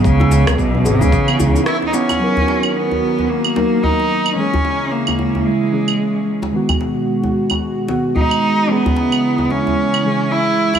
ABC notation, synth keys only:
X:1
M:4/4
L:1/16
Q:"Swing 16ths" 1/4=111
K:C#dor
V:1 name="Synth keys"
z16 | [F,DA]8- [F,DA]2 [F,A,DA] z4 z | [E,G,CG]8- [E,G,CG]2 [E,G,CG] z4 z | [D,G,B,F]8- [D,G,B,F]2 [D,G,B,F] z4 z |
[E,G,CG]8- [E,G,CG]2 [E,G,CG] z4 z |]